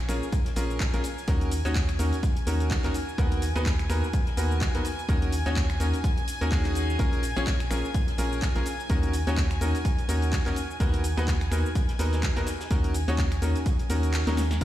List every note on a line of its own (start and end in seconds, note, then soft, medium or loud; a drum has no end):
0.00 14.62 G#5 medium
0.00 14.62 G#6 medium
0.09 0.22 A#1 medium
0.09 0.24 C#4 medium
0.09 0.24 F4 medium
0.09 0.24 G#4 medium
0.09 0.24 A#4 medium
0.09 finger snap medium
0.09 closed hi-hat medium
0.09 open hi-hat loud
0.09 shaker medium
0.23 shaker soft
0.32 kick loud
0.32 closed hi-hat medium
0.32 shaker soft
0.46 snare soft
0.46 closed hi-hat medium
0.46 shaker soft
0.56 0.91 A#1 loud
0.56 0.90 C#4 medium
0.56 0.90 F4 medium
0.56 0.90 G#4 medium
0.56 0.90 A#4 medium
0.56 closed hi-hat medium
0.56 open hi-hat loud
0.56 shaker medium
0.70 closed hi-hat soft
0.70 shaker soft
0.80 kick loud
0.80 snare loud
0.80 clap loud
0.80 closed hi-hat loud
0.80 closed hi-hat medium
0.80 shaker soft
0.94 1.01 A#1 loud
0.94 1.03 C#4 medium
0.94 1.03 F4 medium
0.94 1.03 G#4 medium
0.94 1.03 A#4 loud
0.94 closed hi-hat medium
0.94 shaker soft
1.04 closed hi-hat medium
1.04 open hi-hat loud
1.04 shaker medium
1.18 closed hi-hat soft
1.18 shaker soft
1.28 1.62 D#2 medium
1.28 1.50 C#4 medium
1.28 1.50 D#4 medium
1.28 1.50 F#4 medium
1.28 1.50 A#4 loud
1.28 kick loud
1.28 closed hi-hat medium
1.28 shaker soft
1.41 closed hi-hat medium
1.41 shaker soft
1.51 closed hi-hat medium
1.51 open hi-hat loud
1.51 shaker medium
1.65 1.97 D#2 loud
1.65 1.78 C#4 loud
1.65 1.78 D#4 medium
1.65 1.78 F#4 medium
1.65 1.78 C#5 loud
1.65 snare soft
1.65 closed hi-hat soft
1.65 shaker soft
1.75 kick loud
1.75 snare loud
1.75 clap loud
1.75 closed hi-hat medium
1.75 shaker soft
1.89 finger snap medium
1.89 closed hi-hat medium
1.89 shaker soft
1.99 2.12 D#2 loud
1.99 2.14 C#4 medium
1.99 2.14 D#4 medium
1.99 2.14 F#4 medium
1.99 2.14 A#4 medium
1.99 closed hi-hat medium
1.99 open hi-hat loud
1.99 shaker medium
2.13 closed hi-hat soft
2.13 shaker soft
2.23 kick loud
2.23 closed hi-hat medium
2.23 shaker soft
2.37 closed hi-hat medium
2.37 closed hi-hat soft
2.37 shaker soft
2.47 2.82 D#2 loud
2.47 2.81 C#4 medium
2.47 2.81 D#4 medium
2.47 2.81 F#4 medium
2.47 2.81 A#4 medium
2.47 closed hi-hat medium
2.47 open hi-hat loud
2.47 shaker medium
2.60 closed hi-hat soft
2.60 shaker soft
2.70 kick loud
2.70 snare loud
2.70 clap loud
2.70 closed hi-hat medium
2.70 open hi-hat medium
2.70 shaker soft
2.84 2.91 D#2 loud
2.84 2.93 C#4 medium
2.84 2.93 D#4 medium
2.84 2.93 F#4 medium
2.84 2.93 A#4 loud
2.84 clap soft
2.84 closed hi-hat medium
2.84 shaker soft
2.94 closed hi-hat medium
2.94 open hi-hat loud
2.94 shaker medium
3.09 shaker soft
3.18 3.53 D#2 medium
3.18 3.41 B3 loud
3.18 3.41 D#4 medium
3.18 3.41 F#4 medium
3.18 3.41 A#4 loud
3.18 kick loud
3.18 closed hi-hat medium
3.18 shaker soft
3.31 closed hi-hat soft
3.31 closed hi-hat medium
3.31 shaker soft
3.42 closed hi-hat medium
3.42 open hi-hat loud
3.42 shaker medium
3.56 3.88 D#2 loud
3.56 3.68 B3 loud
3.56 3.68 D#4 medium
3.56 3.68 F#4 medium
3.56 3.68 B4 loud
3.56 closed hi-hat soft
3.56 shaker soft
3.66 kick loud
3.66 snare loud
3.66 clap loud
3.66 closed hi-hat medium
3.66 shaker soft
3.79 finger snap medium
3.79 closed hi-hat medium
3.79 shaker soft
3.89 4.03 D#2 loud
3.89 4.05 B3 medium
3.89 4.05 D#4 medium
3.89 4.05 F#4 medium
3.89 4.05 A#4 medium
3.89 finger snap medium
3.89 closed hi-hat medium
3.89 open hi-hat loud
3.89 shaker medium
4.04 shaker soft
4.13 kick loud
4.13 closed hi-hat medium
4.13 shaker soft
4.27 snare soft
4.27 closed hi-hat medium
4.27 shaker soft
4.37 4.72 D#2 loud
4.37 4.71 B3 medium
4.37 4.71 D#4 medium
4.37 4.71 F#4 medium
4.37 4.71 A#4 medium
4.37 closed hi-hat medium
4.37 open hi-hat loud
4.37 shaker medium
4.51 closed hi-hat soft
4.51 shaker soft
4.61 kick loud
4.61 snare loud
4.61 clap loud
4.61 closed hi-hat medium
4.61 shaker soft
4.75 4.82 D#2 loud
4.75 4.84 B3 medium
4.75 4.84 D#4 medium
4.75 4.84 F#4 medium
4.75 4.84 A#4 medium
4.75 closed hi-hat medium
4.75 shaker soft
4.85 closed hi-hat medium
4.85 open hi-hat loud
4.85 shaker medium
4.99 closed hi-hat soft
4.99 shaker soft
5.09 5.43 D#2 loud
5.09 5.31 C#4 medium
5.09 5.31 D#4 medium
5.09 5.31 F#4 medium
5.09 5.31 A#4 loud
5.09 kick loud
5.09 closed hi-hat medium
5.09 shaker soft
5.22 closed hi-hat medium
5.22 shaker soft
5.32 closed hi-hat medium
5.32 open hi-hat loud
5.32 shaker medium
5.46 5.78 D#2 loud
5.46 5.58 C#4 loud
5.46 5.58 D#4 medium
5.46 5.58 F#4 medium
5.46 5.58 C#5 loud
5.46 snare soft
5.46 closed hi-hat soft
5.46 shaker soft
5.56 kick loud
5.56 snare loud
5.56 clap loud
5.56 closed hi-hat medium
5.56 shaker soft
5.70 finger snap medium
5.70 closed hi-hat medium
5.70 shaker soft
5.80 5.93 D#2 loud
5.80 5.95 C#4 medium
5.80 5.95 D#4 medium
5.80 5.95 F#4 medium
5.80 5.95 A#4 medium
5.80 closed hi-hat medium
5.80 open hi-hat loud
5.80 shaker medium
5.94 closed hi-hat soft
5.94 shaker soft
6.04 kick loud
6.04 closed hi-hat medium
6.04 shaker soft
6.18 closed hi-hat medium
6.18 closed hi-hat soft
6.18 shaker soft
6.28 closed hi-hat medium
6.28 open hi-hat loud
6.28 shaker medium
6.41 6.50 D#2 loud
6.41 6.50 C#4 medium
6.41 6.50 D#4 medium
6.41 6.50 F#4 medium
6.41 6.50 A#4 medium
6.41 closed hi-hat soft
6.41 shaker soft
6.52 6.97 D#2 loud
6.52 6.97 C#4 medium
6.52 6.97 D#4 medium
6.52 6.97 F#4 medium
6.52 6.97 G#4 loud
6.52 kick loud
6.52 snare loud
6.52 clap loud
6.52 closed hi-hat medium
6.52 open hi-hat medium
6.52 shaker soft
6.65 clap soft
6.65 closed hi-hat medium
6.65 shaker soft
6.75 closed hi-hat medium
6.75 open hi-hat loud
6.75 shaker medium
6.90 shaker soft
6.99 7.34 A#1 medium
6.99 7.22 C#4 medium
6.99 7.22 F4 medium
6.99 7.22 G#4 medium
6.99 7.22 A#4 loud
6.99 kick loud
6.99 closed hi-hat medium
6.99 shaker soft
7.13 closed hi-hat medium
7.13 closed hi-hat soft
7.13 shaker soft
7.23 closed hi-hat medium
7.23 open hi-hat loud
7.23 shaker medium
7.36 7.69 A#1 loud
7.36 7.49 C#4 loud
7.36 7.49 F4 medium
7.36 7.49 G#4 medium
7.36 7.49 C#5 loud
7.36 closed hi-hat soft
7.36 shaker soft
7.46 kick loud
7.46 snare loud
7.46 clap loud
7.46 closed hi-hat medium
7.46 shaker soft
7.60 finger snap medium
7.60 closed hi-hat medium
7.60 shaker soft
7.71 7.84 A#1 loud
7.71 7.86 C#4 medium
7.71 7.86 F4 medium
7.71 7.86 G#4 medium
7.71 7.86 A#4 medium
7.71 finger snap medium
7.71 closed hi-hat medium
7.71 open hi-hat loud
7.71 shaker medium
7.85 shaker soft
7.94 kick loud
7.94 closed hi-hat medium
7.94 shaker soft
8.08 snare soft
8.08 closed hi-hat medium
8.08 shaker soft
8.18 8.53 A#1 loud
8.18 8.52 C#4 medium
8.18 8.52 F4 medium
8.18 8.52 G#4 medium
8.18 8.52 A#4 medium
8.18 closed hi-hat medium
8.18 open hi-hat loud
8.18 shaker medium
8.32 closed hi-hat soft
8.32 shaker soft
8.42 kick loud
8.42 snare loud
8.42 clap loud
8.42 closed hi-hat medium
8.42 closed hi-hat loud
8.42 shaker soft
8.56 8.63 A#1 loud
8.56 8.65 C#4 medium
8.56 8.65 F4 medium
8.56 8.65 G#4 medium
8.56 8.65 A#4 medium
8.56 closed hi-hat soft
8.56 shaker soft
8.66 closed hi-hat medium
8.66 open hi-hat loud
8.66 shaker medium
8.79 closed hi-hat soft
8.79 shaker soft
8.89 9.24 D#2 medium
8.89 9.12 C#4 medium
8.89 9.12 D#4 medium
8.89 9.12 F#4 medium
8.89 9.12 A#4 loud
8.89 kick loud
8.89 closed hi-hat medium
8.89 shaker soft
9.03 closed hi-hat medium
9.03 shaker soft
9.13 closed hi-hat medium
9.13 open hi-hat loud
9.13 shaker medium
9.27 9.59 D#2 loud
9.27 9.40 C#4 loud
9.27 9.39 D#4 medium
9.27 9.40 F#4 medium
9.27 9.40 C#5 loud
9.27 snare soft
9.27 closed hi-hat soft
9.27 shaker soft
9.37 kick loud
9.37 snare loud
9.37 clap loud
9.37 closed hi-hat medium
9.37 shaker soft
9.51 finger snap medium
9.51 closed hi-hat medium
9.51 shaker soft
9.61 9.74 D#2 medium
9.61 9.76 C#4 medium
9.61 9.76 D#4 medium
9.61 9.76 F#4 medium
9.61 9.76 A#4 medium
9.61 closed hi-hat medium
9.61 open hi-hat loud
9.61 shaker medium
9.75 closed hi-hat soft
9.75 shaker soft
9.85 kick loud
9.85 closed hi-hat medium
9.85 shaker soft
9.98 closed hi-hat medium
9.98 closed hi-hat soft
9.98 shaker soft
10.09 10.43 D#2 loud
10.09 10.43 C#4 medium
10.09 10.43 D#4 medium
10.09 10.43 F#4 medium
10.09 10.43 A#4 medium
10.09 closed hi-hat medium
10.09 open hi-hat loud
10.09 shaker medium
10.22 closed hi-hat soft
10.22 shaker soft
10.32 kick loud
10.32 snare loud
10.32 clap loud
10.32 closed hi-hat medium
10.32 open hi-hat medium
10.32 shaker soft
10.46 10.53 D#2 loud
10.46 10.55 C#4 medium
10.46 10.55 D#4 medium
10.46 10.55 F#4 medium
10.46 10.55 A#4 loud
10.46 clap soft
10.46 closed hi-hat medium
10.46 shaker soft
10.56 closed hi-hat medium
10.56 open hi-hat loud
10.56 shaker medium
10.71 shaker soft
10.80 11.15 D#2 loud
10.80 11.02 B3 medium
10.80 11.02 D#4 medium
10.80 11.02 F#4 medium
10.80 11.02 A#4 loud
10.80 kick loud
10.80 closed hi-hat medium
10.80 shaker soft
10.94 closed hi-hat soft
10.94 closed hi-hat medium
10.94 shaker soft
11.04 closed hi-hat medium
11.04 open hi-hat loud
11.04 shaker medium
11.17 11.49 D#2 loud
11.17 11.30 B3 loud
11.17 11.30 D#4 medium
11.17 11.30 F#4 medium
11.17 11.30 B4 loud
11.17 closed hi-hat soft
11.17 shaker soft
11.27 kick loud
11.27 snare loud
11.27 clap loud
11.27 closed hi-hat medium
11.27 closed hi-hat loud
11.27 shaker soft
11.41 finger snap medium
11.41 closed hi-hat medium
11.41 shaker soft
11.51 11.65 D#2 loud
11.51 11.67 B3 medium
11.51 11.67 D#4 medium
11.51 11.67 F#4 medium
11.51 11.67 A#4 medium
11.51 finger snap medium
11.51 closed hi-hat medium
11.51 open hi-hat loud
11.51 shaker medium
11.66 shaker soft
11.75 kick loud
11.75 closed hi-hat medium
11.75 shaker soft
11.89 snare soft
11.89 closed hi-hat medium
11.89 shaker soft
11.99 12.34 D#2 loud
11.99 12.33 B3 medium
11.99 12.33 D#4 medium
11.99 12.33 F#4 medium
11.99 12.33 A#4 medium
11.99 snare loud
11.99 closed hi-hat medium
11.99 open hi-hat loud
11.99 shaker medium
12.13 snare loud
12.13 closed hi-hat medium
12.13 shaker soft
12.23 kick loud
12.23 snare loud
12.23 clap loud
12.23 closed hi-hat medium
12.23 shaker soft
12.36 12.44 D#2 loud
12.36 12.46 B3 medium
12.36 12.46 D#4 medium
12.36 12.46 F#4 medium
12.36 12.46 A#4 loud
12.36 snare loud
12.36 closed hi-hat medium
12.36 shaker soft
12.46 snare loud
12.46 closed hi-hat medium
12.46 open hi-hat loud
12.46 shaker medium
12.60 snare loud
12.60 closed hi-hat medium
12.60 shaker soft
12.71 13.05 D#2 loud
12.71 12.93 C#4 medium
12.71 12.93 D#4 medium
12.71 12.93 F#4 medium
12.71 12.93 A#4 loud
12.71 kick loud
12.71 closed hi-hat medium
12.71 shaker soft
12.84 closed hi-hat medium
12.84 shaker soft
12.94 closed hi-hat medium
12.94 open hi-hat loud
12.94 shaker medium
13.08 13.40 D#2 loud
13.08 13.20 C#4 loud
13.08 13.20 D#4 medium
13.08 13.20 F#4 medium
13.08 13.20 C#5 loud
13.08 snare soft
13.08 closed hi-hat soft
13.08 shaker soft
13.18 kick loud
13.18 snare loud
13.18 clap loud
13.18 closed hi-hat medium
13.18 shaker soft
13.32 finger snap medium
13.32 closed hi-hat medium
13.32 shaker soft
13.42 13.55 D#2 loud
13.42 13.57 C#4 medium
13.42 13.57 D#4 medium
13.42 13.57 F#4 medium
13.42 13.57 A#4 medium
13.42 closed hi-hat medium
13.42 open hi-hat loud
13.42 shaker medium
13.55 closed hi-hat soft
13.55 shaker soft
13.66 kick loud
13.66 closed hi-hat medium
13.66 shaker soft
13.79 closed hi-hat medium
13.79 closed hi-hat soft
13.79 shaker soft
13.90 14.24 D#2 loud
13.90 14.24 C#4 medium
13.90 14.24 D#4 medium
13.90 14.24 F#4 medium
13.90 14.24 A#4 medium
13.90 closed hi-hat medium
13.90 open hi-hat loud
13.90 shaker medium
14.03 closed hi-hat soft
14.03 shaker soft
14.13 snare loud
14.13 clap loud
14.13 closed hi-hat medium
14.13 open hi-hat medium
14.13 shaker soft
14.27 14.59 D#2 loud
14.27 14.39 C#4 medium
14.27 14.39 D#4 medium
14.27 14.39 F#4 medium
14.27 14.39 A#4 medium
14.27 snare medium
14.27 closed hi-hat medium
14.27 shaker soft
14.37 snare medium
14.37 closed hi-hat medium
14.37 open hi-hat loud
14.37 shaker medium
14.51 snare medium
14.51 closed hi-hat soft
14.51 shaker soft